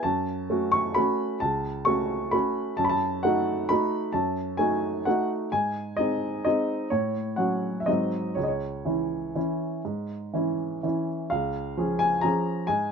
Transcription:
0.03 F#2 A5
0.50 A3 C#4 F#4
0.72 C#6
0.94 A3 C#4 F#4 B5
1.40 C#2 A5
1.85 A3 C#4 F#4 C#6
2.31 A3 C#4 F#4 B5
2.77 F#2 A5
2.84 B5
2.89 A5
3.23 A3 D#4 F#4 F#5
3.69 A3 D#4 F#4 B5
4.13 F#2 A5
4.57 A3 D#4 F#4 G#5
5.05 A3 D#4 F#4 F#5
5.52 G#2 G#5
5.97 G#3 C4 D#4 D#5
6.45 G#3 C4 D#4 D#5
6.90 A2 C#5
7.36 F#3 C#4 F#4 F#5
7.80 E5
7.86 G#2 F#3 C4 D#4 D#5
8.35 C#2 C#5
8.43 D#5
8.48 C#5
8.85 E3 C#4 E4
9.35 E3 C#4 E4
9.85 G#2
10.34 E3 C#4 E4
10.83 E3 C#4 E4
11.30 C#2 F5
11.77 F3 C#4 G#4
11.99 G#5
12.21 F3 C#4 G#4 A#5
12.67 G#2 G#5

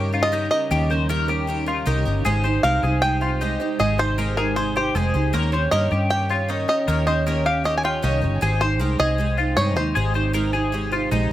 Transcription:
Already playing: G2 C#3 D#3 G3 C#4 D#4 G4 A#4 C#5
0.13 C#4 F4 G4 A#4
0.23 D#5
0.32 D#3 C#4 D#4 G4 A#4
0.51 C#4 G4 A#4 D#5
0.71 D#2 D#3 C#4 G4 A#4
0.90 C#4 G4 A#4 C5
1.09 D#3 C#4 G4 A#4
1.28 C#4 G4 A#4
1.47 D#3 C#4 G4 A#4
1.66 C#4 F4 G4 A#4
1.86 C2 D#3 C#4 D#4 G4 A#4
2.05 G1 C#4 G4 A#4
2.25 G#1 C3 G#3 D#4 G4 G#4 C5 G5
2.44 D#4 G4 C5
2.63 C2 G#3 D#4 G4 A#4 C5 F5
2.83 C2 D#4 G4 G#4 C5
3.02 G#3 D#4 G4 C5 G5
3.21 D#4 F4 G4 C5
3.41 G#3 D#4 G4 C5
3.60 D#4 G4 C5
3.79 G#1 G#3 D#4 G4 G#4 C5 D#5
3.98 D#4 G4 C5
4.18 G#3 D#4 G4 A#4 C5
4.37 D#4 G4 G#4 A#4 C5
4.56 G#3 D#4 G4 C5
4.76 D#4 G4 C5
4.95 F1 G#3 D#4 G4 G#4 C5
5.14 C#2 D#4 G4 C5
5.33 D#2 D#3 A#3 C#4 G4 A#4 C#5 G5
5.52 C#4 G4 C5 C#5
5.71 G2 D#3 A#3 C#4 G4 A#4 C#5 D#5
5.91 G2 C#4 G4 C#5
6.10 A#3 C#4 G4 C#5 G5
6.29 C#4 F4 G4 C#5
6.48 D#3 A#3 C#4 D#4 G4 C#5
6.68 C#4 G4 C#5 D#5
6.88 D#2 D#3 A#3 C#4 G4 A#4 C#5
7.07 C#4 G4 C5 C#5 D#5
7.26 D#3 A#3 C#4 G4 A#4 C#5
7.46 C#4 G4 C#5 F5
7.64 A#3 C#4 G4 C#5 D#5
7.78 G#5
7.83 C#4 F4 G4 C#5 G5
8.02 C2 D#3 A#3 C#4 D#4 G4 C#5
8.21 G1 C#4 G4 C#5
8.41 G#1 C3 G#3 D#4 G4 G#4 C5
8.61 D#4 G4 C5
8.79 C2 G#3 D#4 G4 A#4 C5
8.99 C2 D#4 G4 G#4 C5 D#5
9.18 G#3 D#4 G4 C5
9.37 D#4 F4 G4 C5
9.57 G2 G#3 D#4 G4 C5 C#5
9.76 D#2 D#4 G4 C5
9.95 G#1 G#3 D#4 G4 G#4 C5
10.14 D#4 G4 C5
10.33 G#3 D#4 G4 A#4 C5
10.53 D#4 G4 G#4 C5
10.72 G#3 D#4 G4 C5
10.92 D#4 F4 G4 C5
11.11 A#1 G#3 D#4 G4 C5

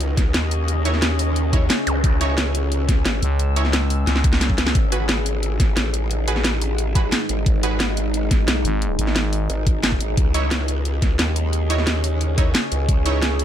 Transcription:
Already playing: C#2 C#4 D#4 E4 G#4 C#5 D#5
0.00 closed hi-hat
0.17 C#2, kick, snare, closed hi-hat
0.34 D#2, snare, closed hi-hat
0.51 closed hi-hat
0.68 closed hi-hat
0.85 D#4 E4 C#5, closed hi-hat
0.94 snare
1.02 snare, closed hi-hat
1.19 open hi-hat
1.36 closed hi-hat
1.53 D#4 E4 C#5, kick, closed hi-hat
1.70 snare, closed hi-hat
1.87 C#2, closed hi-hat, zap
2.04 C#2 E6, kick, closed hi-hat
2.21 D#4 E4 C#5, closed hi-hat
2.38 snare, closed hi-hat
2.55 closed hi-hat
2.72 closed hi-hat
2.89 C#2, kick, snare, closed hi-hat
3.06 G#1, snare, closed hi-hat
3.23 C#2, closed hi-hat
3.39 closed hi-hat
3.56 D#4 E4 C#5, closed hi-hat
3.65 snare
3.73 snare, closed hi-hat
3.90 open hi-hat
4.07 C#2, snare, closed hi-hat
4.16 snare
4.24 kick, closed hi-hat
4.33 snare
4.41 snare, closed hi-hat
4.50 kick
4.58 C#2, snare, closed hi-hat
4.67 snare
4.75 G#1 G#3 D#4, kick, closed hi-hat
4.92 F#4 G#4 B4, closed hi-hat
5.09 snare, closed hi-hat
5.26 closed hi-hat
5.43 closed hi-hat
5.60 G#1, kick, snare, closed hi-hat
5.77 A1, snare, closed hi-hat
5.94 closed hi-hat
6.11 closed hi-hat
6.28 F#4 G#4 B4, closed hi-hat
6.36 snare
6.45 snare, closed hi-hat
6.61 open hi-hat
6.78 closed hi-hat
6.95 F#4 G#4 B4, kick, closed hi-hat
7.12 snare, closed hi-hat
7.29 G#1, closed hi-hat
7.46 G#1, kick, closed hi-hat
7.63 F#4 G#4 B4, closed hi-hat
7.80 snare, closed hi-hat
7.97 closed hi-hat
8.14 closed hi-hat
8.31 G#1, kick, snare, closed hi-hat
8.48 B1, snare, closed hi-hat
8.65 G#1, closed hi-hat
8.82 closed hi-hat
8.99 G#1, closed hi-hat
9.07 snare
9.16 snare, closed hi-hat
9.33 open hi-hat
9.50 G#1, closed hi-hat
9.67 kick, closed hi-hat
9.84 snare, closed hi-hat
9.92 kick
10.00 G#1, closed hi-hat
10.17 C#2 C#4 G#4 D#5, kick, closed hi-hat
10.34 D#4 E4 C#5, closed hi-hat
10.51 snare, closed hi-hat
10.68 closed hi-hat
10.85 closed hi-hat
11.02 C#2, kick, snare, closed hi-hat
11.19 D#2, snare, closed hi-hat
11.36 closed hi-hat
11.53 closed hi-hat
11.70 D#4 E4 C#5, closed hi-hat
11.78 snare
11.87 snare, closed hi-hat
12.04 open hi-hat
12.21 closed hi-hat
12.38 D#4 E4 C#5, kick, closed hi-hat
12.55 snare, closed hi-hat
12.72 C#2, closed hi-hat
12.89 C#2 E6, kick, closed hi-hat
13.06 D#4 E4 C#5, closed hi-hat
13.23 snare, closed hi-hat
13.39 closed hi-hat

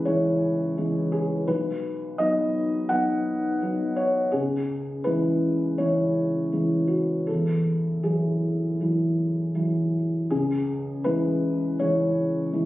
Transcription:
Already playing: C#2 E3 G#3 E4 G#4 B4
0.05 E3 G#3 E4 C#5
0.77 E3 G#3 E4
1.12 G#4
1.48 B1 B4
2.18 F#3 B3 D#4 D#5
2.89 F#3 B3 D#4 F#5
3.62 F#3 B3 D#4
3.96 C#5
4.32 C#2 G#4
5.04 E3 G#3 E4 B4
5.78 E3 G#3 E4 C#5
6.52 E3 G#3 E4
6.87 F#4
7.27 E2 A4
8.03 E3 F#3 E4 G#4
8.80 E3 F#3 E4
9.55 E3 F#3 E4
10.30 C#2 G#4
11.04 E3 G#3 E4 B4
11.79 E3 G#3 E4 C#5
12.53 E3 G#3 E4

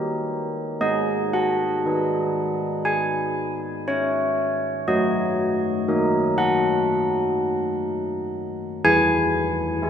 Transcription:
Already playing: G4 A#4 D#5
0.81 G#3 D#5
1.33 F#5
1.86 D#4 B4
2.85 G#5
3.88 C#5
4.88 F#3 D#5
5.88 D#4 A#4
6.38 F#5
8.84 E3 G#5
9.82 E4 G#4

